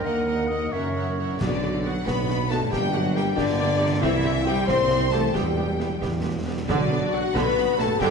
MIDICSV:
0, 0, Header, 1, 14, 480
1, 0, Start_track
1, 0, Tempo, 451128
1, 56, Time_signature, 6, 3, 24, 8
1, 1498, Tempo, 440205
1, 8798, End_track
2, 0, Start_track
2, 0, Title_t, "Violin section"
2, 0, Program_c, 0, 48
2, 50, Note_on_c, 0, 78, 55
2, 280, Note_off_c, 0, 78, 0
2, 293, Note_on_c, 0, 78, 47
2, 519, Note_off_c, 0, 78, 0
2, 532, Note_on_c, 0, 78, 38
2, 765, Note_off_c, 0, 78, 0
2, 778, Note_on_c, 0, 78, 43
2, 995, Note_off_c, 0, 78, 0
2, 1008, Note_on_c, 0, 78, 41
2, 1248, Note_off_c, 0, 78, 0
2, 1260, Note_on_c, 0, 78, 43
2, 1485, Note_on_c, 0, 74, 63
2, 1494, Note_off_c, 0, 78, 0
2, 1939, Note_off_c, 0, 74, 0
2, 1976, Note_on_c, 0, 78, 61
2, 2217, Note_off_c, 0, 78, 0
2, 2222, Note_on_c, 0, 83, 71
2, 2697, Note_on_c, 0, 81, 77
2, 2699, Note_off_c, 0, 83, 0
2, 2784, Note_off_c, 0, 81, 0
2, 2933, Note_on_c, 0, 79, 77
2, 3166, Note_off_c, 0, 79, 0
2, 3177, Note_on_c, 0, 78, 78
2, 3408, Note_on_c, 0, 79, 76
2, 3411, Note_off_c, 0, 78, 0
2, 3640, Note_on_c, 0, 74, 89
2, 3644, Note_off_c, 0, 79, 0
2, 4353, Note_off_c, 0, 74, 0
2, 4360, Note_on_c, 0, 76, 90
2, 4825, Note_off_c, 0, 76, 0
2, 4832, Note_on_c, 0, 79, 88
2, 5068, Note_off_c, 0, 79, 0
2, 5073, Note_on_c, 0, 84, 94
2, 5544, Note_off_c, 0, 84, 0
2, 5548, Note_on_c, 0, 81, 81
2, 5794, Note_off_c, 0, 81, 0
2, 5797, Note_on_c, 0, 79, 63
2, 6530, Note_off_c, 0, 79, 0
2, 7249, Note_on_c, 0, 74, 80
2, 7705, Note_off_c, 0, 74, 0
2, 7740, Note_on_c, 0, 78, 81
2, 7982, Note_off_c, 0, 78, 0
2, 7984, Note_on_c, 0, 83, 82
2, 8462, Note_off_c, 0, 83, 0
2, 8463, Note_on_c, 0, 81, 88
2, 8550, Note_off_c, 0, 81, 0
2, 8700, Note_on_c, 0, 79, 97
2, 8798, Note_off_c, 0, 79, 0
2, 8798, End_track
3, 0, Start_track
3, 0, Title_t, "Violin section"
3, 0, Program_c, 1, 48
3, 50, Note_on_c, 1, 75, 52
3, 269, Note_off_c, 1, 75, 0
3, 282, Note_on_c, 1, 75, 40
3, 509, Note_off_c, 1, 75, 0
3, 521, Note_on_c, 1, 75, 47
3, 762, Note_on_c, 1, 76, 42
3, 764, Note_off_c, 1, 75, 0
3, 991, Note_off_c, 1, 76, 0
3, 1004, Note_on_c, 1, 76, 40
3, 1234, Note_off_c, 1, 76, 0
3, 1247, Note_on_c, 1, 76, 41
3, 1487, Note_off_c, 1, 76, 0
3, 1487, Note_on_c, 1, 74, 63
3, 1940, Note_off_c, 1, 74, 0
3, 1979, Note_on_c, 1, 78, 70
3, 2214, Note_off_c, 1, 78, 0
3, 2225, Note_on_c, 1, 83, 75
3, 2687, Note_on_c, 1, 81, 73
3, 2700, Note_off_c, 1, 83, 0
3, 2929, Note_off_c, 1, 81, 0
3, 2933, Note_on_c, 1, 79, 84
3, 3166, Note_off_c, 1, 79, 0
3, 3182, Note_on_c, 1, 78, 72
3, 3414, Note_off_c, 1, 78, 0
3, 3428, Note_on_c, 1, 79, 84
3, 3515, Note_off_c, 1, 79, 0
3, 3653, Note_on_c, 1, 74, 87
3, 4345, Note_off_c, 1, 74, 0
3, 4368, Note_on_c, 1, 76, 91
3, 4830, Note_off_c, 1, 76, 0
3, 4848, Note_on_c, 1, 79, 96
3, 5080, Note_off_c, 1, 79, 0
3, 5080, Note_on_c, 1, 84, 89
3, 5548, Note_off_c, 1, 84, 0
3, 5560, Note_on_c, 1, 81, 83
3, 5800, Note_off_c, 1, 81, 0
3, 5804, Note_on_c, 1, 79, 59
3, 6519, Note_off_c, 1, 79, 0
3, 7267, Note_on_c, 1, 74, 74
3, 7715, Note_off_c, 1, 74, 0
3, 7746, Note_on_c, 1, 78, 76
3, 7981, Note_off_c, 1, 78, 0
3, 7992, Note_on_c, 1, 83, 87
3, 8466, Note_off_c, 1, 83, 0
3, 8469, Note_on_c, 1, 81, 90
3, 8699, Note_on_c, 1, 79, 106
3, 8703, Note_off_c, 1, 81, 0
3, 8798, Note_off_c, 1, 79, 0
3, 8798, End_track
4, 0, Start_track
4, 0, Title_t, "Flute"
4, 0, Program_c, 2, 73
4, 58, Note_on_c, 2, 78, 51
4, 779, Note_on_c, 2, 76, 44
4, 795, Note_off_c, 2, 78, 0
4, 1259, Note_off_c, 2, 76, 0
4, 8798, End_track
5, 0, Start_track
5, 0, Title_t, "Oboe"
5, 0, Program_c, 3, 68
5, 32, Note_on_c, 3, 70, 54
5, 507, Note_on_c, 3, 75, 60
5, 523, Note_off_c, 3, 70, 0
5, 769, Note_on_c, 3, 73, 51
5, 785, Note_off_c, 3, 75, 0
5, 1494, Note_off_c, 3, 73, 0
5, 8798, End_track
6, 0, Start_track
6, 0, Title_t, "Clarinet"
6, 0, Program_c, 4, 71
6, 43, Note_on_c, 4, 70, 49
6, 754, Note_off_c, 4, 70, 0
6, 779, Note_on_c, 4, 70, 46
6, 1250, Note_off_c, 4, 70, 0
6, 8798, End_track
7, 0, Start_track
7, 0, Title_t, "French horn section"
7, 0, Program_c, 5, 60
7, 55, Note_on_c, 5, 58, 71
7, 523, Note_off_c, 5, 58, 0
7, 535, Note_on_c, 5, 63, 67
7, 772, Note_on_c, 5, 61, 57
7, 775, Note_off_c, 5, 63, 0
7, 1481, Note_off_c, 5, 61, 0
7, 1508, Note_on_c, 5, 62, 69
7, 1951, Note_off_c, 5, 62, 0
7, 1992, Note_on_c, 5, 66, 75
7, 2220, Note_on_c, 5, 71, 76
7, 2225, Note_off_c, 5, 66, 0
7, 2688, Note_off_c, 5, 71, 0
7, 2693, Note_on_c, 5, 69, 81
7, 2922, Note_on_c, 5, 67, 93
7, 2927, Note_off_c, 5, 69, 0
7, 3156, Note_on_c, 5, 66, 86
7, 3160, Note_off_c, 5, 67, 0
7, 3401, Note_off_c, 5, 66, 0
7, 3406, Note_on_c, 5, 67, 92
7, 3635, Note_on_c, 5, 62, 95
7, 3644, Note_off_c, 5, 67, 0
7, 4341, Note_on_c, 5, 64, 116
7, 4350, Note_off_c, 5, 62, 0
7, 4816, Note_off_c, 5, 64, 0
7, 4821, Note_on_c, 5, 67, 106
7, 5056, Note_on_c, 5, 72, 111
7, 5067, Note_off_c, 5, 67, 0
7, 5404, Note_off_c, 5, 72, 0
7, 5548, Note_on_c, 5, 69, 88
7, 5786, Note_on_c, 5, 67, 69
7, 5789, Note_off_c, 5, 69, 0
7, 6525, Note_off_c, 5, 67, 0
7, 7254, Note_on_c, 5, 62, 83
7, 7708, Note_off_c, 5, 62, 0
7, 7743, Note_on_c, 5, 66, 98
7, 7974, Note_on_c, 5, 71, 97
7, 7979, Note_off_c, 5, 66, 0
7, 8448, Note_off_c, 5, 71, 0
7, 8457, Note_on_c, 5, 69, 108
7, 8685, Note_on_c, 5, 67, 113
7, 8692, Note_off_c, 5, 69, 0
7, 8798, Note_off_c, 5, 67, 0
7, 8798, End_track
8, 0, Start_track
8, 0, Title_t, "Viola section"
8, 0, Program_c, 6, 48
8, 52, Note_on_c, 6, 70, 51
8, 282, Note_off_c, 6, 70, 0
8, 295, Note_on_c, 6, 70, 38
8, 530, Note_off_c, 6, 70, 0
8, 540, Note_on_c, 6, 70, 44
8, 764, Note_off_c, 6, 70, 0
8, 777, Note_on_c, 6, 70, 43
8, 1008, Note_off_c, 6, 70, 0
8, 1021, Note_on_c, 6, 70, 41
8, 1251, Note_off_c, 6, 70, 0
8, 1264, Note_on_c, 6, 70, 37
8, 1496, Note_off_c, 6, 70, 0
8, 1500, Note_on_c, 6, 66, 55
8, 1502, Note_on_c, 6, 59, 58
8, 1587, Note_off_c, 6, 66, 0
8, 1589, Note_off_c, 6, 59, 0
8, 1741, Note_on_c, 6, 59, 44
8, 1743, Note_on_c, 6, 66, 44
8, 1828, Note_off_c, 6, 59, 0
8, 1830, Note_off_c, 6, 66, 0
8, 1982, Note_on_c, 6, 66, 50
8, 1984, Note_on_c, 6, 59, 48
8, 2070, Note_off_c, 6, 66, 0
8, 2071, Note_off_c, 6, 59, 0
8, 2219, Note_on_c, 6, 59, 48
8, 2221, Note_on_c, 6, 66, 54
8, 2307, Note_off_c, 6, 59, 0
8, 2309, Note_off_c, 6, 66, 0
8, 2450, Note_on_c, 6, 66, 45
8, 2454, Note_on_c, 6, 59, 51
8, 2537, Note_off_c, 6, 66, 0
8, 2541, Note_off_c, 6, 59, 0
8, 2695, Note_on_c, 6, 59, 53
8, 2698, Note_on_c, 6, 66, 54
8, 2782, Note_off_c, 6, 59, 0
8, 2785, Note_off_c, 6, 66, 0
8, 2927, Note_on_c, 6, 58, 64
8, 2928, Note_on_c, 6, 67, 65
8, 3014, Note_off_c, 6, 58, 0
8, 3016, Note_off_c, 6, 67, 0
8, 3165, Note_on_c, 6, 58, 52
8, 3168, Note_on_c, 6, 67, 58
8, 3252, Note_off_c, 6, 58, 0
8, 3255, Note_off_c, 6, 67, 0
8, 3408, Note_on_c, 6, 58, 68
8, 3410, Note_on_c, 6, 67, 67
8, 3496, Note_off_c, 6, 58, 0
8, 3497, Note_off_c, 6, 67, 0
8, 3633, Note_on_c, 6, 67, 67
8, 3636, Note_on_c, 6, 58, 61
8, 3720, Note_off_c, 6, 67, 0
8, 3723, Note_off_c, 6, 58, 0
8, 3868, Note_on_c, 6, 67, 61
8, 3871, Note_on_c, 6, 58, 67
8, 3956, Note_off_c, 6, 67, 0
8, 3959, Note_off_c, 6, 58, 0
8, 4111, Note_on_c, 6, 67, 70
8, 4113, Note_on_c, 6, 58, 67
8, 4198, Note_off_c, 6, 67, 0
8, 4200, Note_off_c, 6, 58, 0
8, 4345, Note_on_c, 6, 60, 86
8, 4345, Note_on_c, 6, 67, 75
8, 4432, Note_off_c, 6, 67, 0
8, 4433, Note_off_c, 6, 60, 0
8, 4584, Note_on_c, 6, 67, 59
8, 4585, Note_on_c, 6, 60, 64
8, 4671, Note_off_c, 6, 67, 0
8, 4673, Note_off_c, 6, 60, 0
8, 4830, Note_on_c, 6, 60, 71
8, 4833, Note_on_c, 6, 67, 74
8, 4917, Note_off_c, 6, 60, 0
8, 4920, Note_off_c, 6, 67, 0
8, 5062, Note_on_c, 6, 60, 69
8, 5062, Note_on_c, 6, 67, 70
8, 5149, Note_off_c, 6, 60, 0
8, 5149, Note_off_c, 6, 67, 0
8, 5308, Note_on_c, 6, 60, 66
8, 5310, Note_on_c, 6, 67, 55
8, 5395, Note_off_c, 6, 60, 0
8, 5397, Note_off_c, 6, 67, 0
8, 5544, Note_on_c, 6, 60, 55
8, 5544, Note_on_c, 6, 67, 60
8, 5631, Note_off_c, 6, 60, 0
8, 5631, Note_off_c, 6, 67, 0
8, 5793, Note_on_c, 6, 59, 64
8, 5793, Note_on_c, 6, 67, 69
8, 5880, Note_off_c, 6, 59, 0
8, 5880, Note_off_c, 6, 67, 0
8, 6035, Note_on_c, 6, 59, 50
8, 6036, Note_on_c, 6, 67, 45
8, 6122, Note_off_c, 6, 59, 0
8, 6123, Note_off_c, 6, 67, 0
8, 6280, Note_on_c, 6, 67, 54
8, 6286, Note_on_c, 6, 59, 54
8, 6367, Note_off_c, 6, 67, 0
8, 6373, Note_off_c, 6, 59, 0
8, 6517, Note_on_c, 6, 67, 52
8, 6519, Note_on_c, 6, 59, 51
8, 6604, Note_off_c, 6, 67, 0
8, 6606, Note_off_c, 6, 59, 0
8, 6764, Note_on_c, 6, 67, 47
8, 6765, Note_on_c, 6, 59, 52
8, 6851, Note_off_c, 6, 67, 0
8, 6852, Note_off_c, 6, 59, 0
8, 7012, Note_on_c, 6, 59, 52
8, 7013, Note_on_c, 6, 67, 46
8, 7099, Note_off_c, 6, 59, 0
8, 7101, Note_off_c, 6, 67, 0
8, 7253, Note_on_c, 6, 66, 68
8, 7256, Note_on_c, 6, 50, 81
8, 7484, Note_off_c, 6, 50, 0
8, 7502, Note_on_c, 6, 59, 45
8, 7589, Note_off_c, 6, 59, 0
8, 7740, Note_on_c, 6, 54, 60
8, 7827, Note_off_c, 6, 54, 0
8, 7979, Note_on_c, 6, 50, 80
8, 8204, Note_off_c, 6, 50, 0
8, 8219, Note_on_c, 6, 59, 62
8, 8306, Note_off_c, 6, 59, 0
8, 8450, Note_on_c, 6, 54, 67
8, 8537, Note_off_c, 6, 54, 0
8, 8653, Note_off_c, 6, 66, 0
8, 8696, Note_on_c, 6, 67, 80
8, 8698, Note_on_c, 6, 50, 103
8, 8798, Note_off_c, 6, 50, 0
8, 8798, Note_off_c, 6, 67, 0
8, 8798, End_track
9, 0, Start_track
9, 0, Title_t, "Harp"
9, 0, Program_c, 7, 46
9, 0, Note_on_c, 7, 58, 44
9, 0, Note_on_c, 7, 70, 43
9, 49, Note_on_c, 7, 51, 58
9, 287, Note_on_c, 7, 63, 40
9, 515, Note_off_c, 7, 63, 0
9, 527, Note_on_c, 7, 63, 35
9, 534, Note_on_c, 7, 66, 39
9, 765, Note_on_c, 7, 42, 48
9, 790, Note_off_c, 7, 51, 0
9, 791, Note_off_c, 7, 63, 0
9, 994, Note_off_c, 7, 58, 0
9, 1243, Note_off_c, 7, 66, 0
9, 1250, Note_on_c, 7, 64, 38
9, 1255, Note_on_c, 7, 66, 37
9, 1301, Note_on_c, 7, 47, 55
9, 1347, Note_on_c, 7, 59, 43
9, 1393, Note_on_c, 7, 62, 47
9, 1430, Note_off_c, 7, 66, 0
9, 1443, Note_on_c, 7, 66, 47
9, 1512, Note_off_c, 7, 42, 0
9, 1513, Note_off_c, 7, 64, 0
9, 1515, Note_off_c, 7, 70, 0
9, 2738, Note_on_c, 7, 43, 60
9, 2788, Note_on_c, 7, 58, 50
9, 2825, Note_off_c, 7, 62, 0
9, 2838, Note_on_c, 7, 62, 52
9, 2853, Note_off_c, 7, 47, 0
9, 2876, Note_off_c, 7, 59, 0
9, 2887, Note_on_c, 7, 67, 56
9, 2925, Note_off_c, 7, 66, 0
9, 4158, Note_on_c, 7, 48, 81
9, 4208, Note_on_c, 7, 55, 65
9, 4259, Note_on_c, 7, 60, 64
9, 4276, Note_off_c, 7, 43, 0
9, 4295, Note_off_c, 7, 67, 0
9, 4301, Note_off_c, 7, 58, 0
9, 4308, Note_on_c, 7, 67, 65
9, 4326, Note_off_c, 7, 62, 0
9, 5597, Note_on_c, 7, 52, 60
9, 5634, Note_off_c, 7, 55, 0
9, 5647, Note_on_c, 7, 55, 52
9, 5696, Note_on_c, 7, 59, 53
9, 5718, Note_off_c, 7, 48, 0
9, 5743, Note_on_c, 7, 64, 51
9, 5768, Note_off_c, 7, 60, 0
9, 7058, Note_on_c, 7, 47, 64
9, 7104, Note_on_c, 7, 54, 54
9, 7144, Note_off_c, 7, 59, 0
9, 7157, Note_on_c, 7, 59, 55
9, 7181, Note_off_c, 7, 52, 0
9, 7205, Note_on_c, 7, 62, 52
9, 7206, Note_off_c, 7, 55, 0
9, 7254, Note_off_c, 7, 64, 0
9, 7257, Note_off_c, 7, 67, 0
9, 8495, Note_on_c, 7, 43, 74
9, 8543, Note_on_c, 7, 55, 67
9, 8594, Note_on_c, 7, 58, 65
9, 8618, Note_off_c, 7, 47, 0
9, 8641, Note_off_c, 7, 54, 0
9, 8643, Note_on_c, 7, 67, 67
9, 8668, Note_off_c, 7, 59, 0
9, 8798, Note_off_c, 7, 43, 0
9, 8798, Note_off_c, 7, 55, 0
9, 8798, Note_off_c, 7, 58, 0
9, 8798, Note_off_c, 7, 62, 0
9, 8798, Note_off_c, 7, 67, 0
9, 8798, End_track
10, 0, Start_track
10, 0, Title_t, "Cello section"
10, 0, Program_c, 8, 48
10, 55, Note_on_c, 8, 39, 56
10, 689, Note_off_c, 8, 39, 0
10, 774, Note_on_c, 8, 42, 52
10, 1412, Note_off_c, 8, 42, 0
10, 1504, Note_on_c, 8, 50, 57
10, 1949, Note_off_c, 8, 50, 0
10, 1986, Note_on_c, 8, 54, 68
10, 2222, Note_off_c, 8, 54, 0
10, 2231, Note_on_c, 8, 59, 68
10, 2700, Note_on_c, 8, 57, 73
10, 2703, Note_off_c, 8, 59, 0
10, 2936, Note_off_c, 8, 57, 0
10, 2944, Note_on_c, 8, 55, 69
10, 3174, Note_on_c, 8, 54, 82
10, 3176, Note_off_c, 8, 55, 0
10, 3405, Note_off_c, 8, 54, 0
10, 3422, Note_on_c, 8, 55, 83
10, 3648, Note_on_c, 8, 50, 83
10, 3651, Note_off_c, 8, 55, 0
10, 4342, Note_off_c, 8, 50, 0
10, 4353, Note_on_c, 8, 52, 79
10, 4831, Note_off_c, 8, 52, 0
10, 4834, Note_on_c, 8, 55, 95
10, 5068, Note_off_c, 8, 55, 0
10, 5074, Note_on_c, 8, 60, 96
10, 5554, Note_off_c, 8, 60, 0
10, 5558, Note_on_c, 8, 57, 82
10, 5794, Note_off_c, 8, 57, 0
10, 5801, Note_on_c, 8, 55, 58
10, 6518, Note_off_c, 8, 55, 0
10, 7260, Note_on_c, 8, 50, 71
10, 7711, Note_off_c, 8, 50, 0
10, 7742, Note_on_c, 8, 54, 70
10, 7829, Note_off_c, 8, 54, 0
10, 7977, Note_on_c, 8, 59, 92
10, 8449, Note_off_c, 8, 59, 0
10, 8453, Note_on_c, 8, 57, 88
10, 8540, Note_off_c, 8, 57, 0
10, 8696, Note_on_c, 8, 55, 92
10, 8798, Note_off_c, 8, 55, 0
10, 8798, End_track
11, 0, Start_track
11, 0, Title_t, "Timpani"
11, 0, Program_c, 10, 47
11, 1496, Note_on_c, 10, 47, 77
11, 2174, Note_off_c, 10, 47, 0
11, 7257, Note_on_c, 10, 47, 86
11, 7939, Note_off_c, 10, 47, 0
11, 8798, End_track
12, 0, Start_track
12, 0, Title_t, "Double bass section"
12, 0, Program_c, 11, 48
12, 50, Note_on_c, 11, 39, 60
12, 686, Note_off_c, 11, 39, 0
12, 775, Note_on_c, 11, 30, 58
12, 1412, Note_off_c, 11, 30, 0
12, 1496, Note_on_c, 11, 35, 58
12, 2133, Note_off_c, 11, 35, 0
12, 2214, Note_on_c, 11, 35, 72
12, 2848, Note_off_c, 11, 35, 0
12, 2936, Note_on_c, 11, 31, 74
12, 3562, Note_off_c, 11, 31, 0
12, 3647, Note_on_c, 11, 31, 83
12, 4272, Note_off_c, 11, 31, 0
12, 4359, Note_on_c, 11, 36, 94
12, 4989, Note_off_c, 11, 36, 0
12, 5074, Note_on_c, 11, 36, 88
12, 5711, Note_off_c, 11, 36, 0
12, 5796, Note_on_c, 11, 40, 74
12, 6444, Note_off_c, 11, 40, 0
12, 6523, Note_on_c, 11, 40, 70
12, 7171, Note_off_c, 11, 40, 0
12, 7249, Note_on_c, 11, 35, 79
12, 7336, Note_off_c, 11, 35, 0
12, 7490, Note_on_c, 11, 35, 57
12, 7577, Note_off_c, 11, 35, 0
12, 7742, Note_on_c, 11, 35, 54
12, 7829, Note_off_c, 11, 35, 0
12, 7981, Note_on_c, 11, 35, 100
12, 8068, Note_off_c, 11, 35, 0
12, 8214, Note_on_c, 11, 35, 68
12, 8301, Note_off_c, 11, 35, 0
12, 8457, Note_on_c, 11, 35, 66
12, 8544, Note_off_c, 11, 35, 0
12, 8695, Note_on_c, 11, 31, 95
12, 8782, Note_off_c, 11, 31, 0
12, 8798, End_track
13, 0, Start_track
13, 0, Title_t, "Tuba"
13, 0, Program_c, 12, 58
13, 1495, Note_on_c, 12, 35, 67
13, 2133, Note_off_c, 12, 35, 0
13, 2222, Note_on_c, 12, 35, 63
13, 2852, Note_off_c, 12, 35, 0
13, 2936, Note_on_c, 12, 31, 79
13, 3562, Note_off_c, 12, 31, 0
13, 3652, Note_on_c, 12, 31, 86
13, 4274, Note_off_c, 12, 31, 0
13, 4355, Note_on_c, 12, 36, 96
13, 4988, Note_off_c, 12, 36, 0
13, 5078, Note_on_c, 12, 36, 83
13, 5713, Note_off_c, 12, 36, 0
13, 5797, Note_on_c, 12, 28, 72
13, 6444, Note_off_c, 12, 28, 0
13, 6532, Note_on_c, 12, 28, 63
13, 7176, Note_off_c, 12, 28, 0
13, 7258, Note_on_c, 12, 35, 83
13, 7356, Note_off_c, 12, 35, 0
13, 7504, Note_on_c, 12, 35, 59
13, 7601, Note_off_c, 12, 35, 0
13, 7742, Note_on_c, 12, 35, 53
13, 7839, Note_off_c, 12, 35, 0
13, 7977, Note_on_c, 12, 35, 83
13, 8074, Note_off_c, 12, 35, 0
13, 8224, Note_on_c, 12, 35, 61
13, 8319, Note_off_c, 12, 35, 0
13, 8457, Note_on_c, 12, 35, 70
13, 8553, Note_off_c, 12, 35, 0
13, 8697, Note_on_c, 12, 31, 101
13, 8793, Note_off_c, 12, 31, 0
13, 8798, End_track
14, 0, Start_track
14, 0, Title_t, "Drums"
14, 1500, Note_on_c, 9, 35, 74
14, 1500, Note_on_c, 9, 38, 66
14, 1500, Note_on_c, 9, 49, 44
14, 1609, Note_off_c, 9, 35, 0
14, 1609, Note_off_c, 9, 38, 0
14, 1609, Note_off_c, 9, 49, 0
14, 2226, Note_on_c, 9, 35, 68
14, 2226, Note_on_c, 9, 38, 65
14, 2335, Note_off_c, 9, 35, 0
14, 2335, Note_off_c, 9, 38, 0
14, 2466, Note_on_c, 9, 38, 49
14, 2575, Note_off_c, 9, 38, 0
14, 2699, Note_on_c, 9, 38, 46
14, 2808, Note_off_c, 9, 38, 0
14, 2939, Note_on_c, 9, 35, 69
14, 2939, Note_on_c, 9, 38, 64
14, 3048, Note_off_c, 9, 35, 0
14, 3048, Note_off_c, 9, 38, 0
14, 3415, Note_on_c, 9, 38, 50
14, 3525, Note_off_c, 9, 38, 0
14, 3647, Note_on_c, 9, 35, 73
14, 3647, Note_on_c, 9, 38, 64
14, 3756, Note_off_c, 9, 35, 0
14, 3756, Note_off_c, 9, 38, 0
14, 4359, Note_on_c, 9, 35, 72
14, 4359, Note_on_c, 9, 38, 69
14, 4468, Note_off_c, 9, 35, 0
14, 4468, Note_off_c, 9, 38, 0
14, 5070, Note_on_c, 9, 35, 78
14, 5070, Note_on_c, 9, 38, 72
14, 5179, Note_off_c, 9, 35, 0
14, 5179, Note_off_c, 9, 38, 0
14, 5308, Note_on_c, 9, 38, 54
14, 5417, Note_off_c, 9, 38, 0
14, 5551, Note_on_c, 9, 38, 48
14, 5660, Note_off_c, 9, 38, 0
14, 5798, Note_on_c, 9, 35, 67
14, 5798, Note_on_c, 9, 38, 61
14, 5907, Note_off_c, 9, 35, 0
14, 5907, Note_off_c, 9, 38, 0
14, 6289, Note_on_c, 9, 38, 48
14, 6398, Note_off_c, 9, 38, 0
14, 6530, Note_on_c, 9, 35, 71
14, 6530, Note_on_c, 9, 38, 58
14, 6639, Note_off_c, 9, 35, 0
14, 6639, Note_off_c, 9, 38, 0
14, 7258, Note_on_c, 9, 35, 79
14, 7258, Note_on_c, 9, 38, 65
14, 7258, Note_on_c, 9, 49, 31
14, 7367, Note_off_c, 9, 35, 0
14, 7367, Note_off_c, 9, 38, 0
14, 7367, Note_off_c, 9, 49, 0
14, 7984, Note_on_c, 9, 35, 74
14, 7984, Note_on_c, 9, 38, 72
14, 8093, Note_off_c, 9, 35, 0
14, 8093, Note_off_c, 9, 38, 0
14, 8224, Note_on_c, 9, 38, 55
14, 8333, Note_off_c, 9, 38, 0
14, 8458, Note_on_c, 9, 38, 52
14, 8568, Note_off_c, 9, 38, 0
14, 8697, Note_on_c, 9, 35, 77
14, 8697, Note_on_c, 9, 38, 76
14, 8798, Note_off_c, 9, 35, 0
14, 8798, Note_off_c, 9, 38, 0
14, 8798, End_track
0, 0, End_of_file